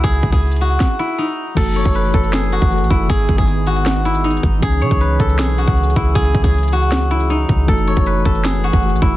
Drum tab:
CC |------------------------------------------------------------------------------------------------|x-----------------------------------------------------------------------------------------------|------------------------------------------------------------------------------------------------|------------------------------------------------------------------------------------------------|
HH |x-----x-----x-----x-----x--x--x--x--o-----x-----------------------------------------------------|x-----x-----x-----x-----x-----------x-----x-----x-----x-----x-----x-----x---x---x---x-----------|x-----x-----x-----x-----x-----------x-----x-----x-----x-----x-----x-----x---x---x---x-----------|x-----x-----x-----x-----x-----------x-----x-----x-----x-----x-----x-----x---x---x---x-----------|
SD |------------------------------------------------o-----------------------------------------------|------------------------------------------------o-----------------------------------------------|------------------------------------------------o-----------------------------------------------|------------------------------------------------o-----------------------------------------------|
BD |o-----------o-----o-----------------------------o-----------------------------------------------|o-----------------o-----------------o-----------------------------o-----------------o-----------|o-----------o-----o-----------------------------------------------------------------o-----------|o-----------------o-----------------o-----------------------------o-----------------o-----------|

CC |------------------------------------------------------------------------------------------------|------------------------------------------------------------------------------------------------|
HH |x-----x-----x-----x-----x--x--x--x--o-----x-----x-----x-----x-----x-----x-----------x-----------|x-----x-----x-----x-----x-----------x-----x-----x-----x-----x-----x-----x---x---x---x-----------|
SD |------------------------------------------------o-----------------------------------------------|------------------------------------------------o-----------------------------------------------|
BD |o-----------o-----o-----------------------------------------------------------------o-----------|o-----------------o-----------------o-----------------------------o-----------------o-----------|